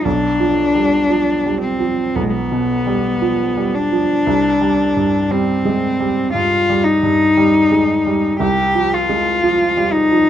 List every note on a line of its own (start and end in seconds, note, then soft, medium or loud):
0.05 2.13 B1 soft
0.05 1.61 D4 soft
0.40 0.97 F3 soft
0.75 1.32 G3 soft
1.10 1.67 F3 soft
1.46 1.81 G3 soft
1.61 2.17 C4 soft
1.80 2.37 F3 soft
2.15 4.23 B1 soft
2.15 2.23 B3 soft
2.22 2.31 G#3 soft
2.30 3.76 B3 soft
2.52 3.09 B2 soft
2.86 3.43 G3 soft
3.22 3.78 F3 soft
3.57 3.92 G3 soft
3.75 5.32 D4 soft
3.92 4.27 F3 soft
4.27 6.30 C2 soft
4.61 5.17 G3 soft
4.97 5.52 G2 soft
5.30 5.86 G3 soft
5.30 6.32 C4 soft
5.65 6.00 G#3 soft
6.00 6.55 G3 soft
6.33 6.89 G2 soft
6.33 6.86 F4 medium
6.69 7.24 G3 soft
6.84 8.39 D#4 soft
7.03 7.58 G2 soft
7.37 7.93 G3 soft
7.71 8.06 G#3 soft
8.07 8.41 G3 soft
8.40 10.29 C2 soft
8.40 8.95 G4 medium
8.75 9.30 F3 soft
8.94 9.95 F4 soft
9.09 9.64 G#3 soft
9.43 9.98 F3 soft
9.77 10.12 G3 soft
9.93 10.29 D#4 medium
10.11 10.29 F3 soft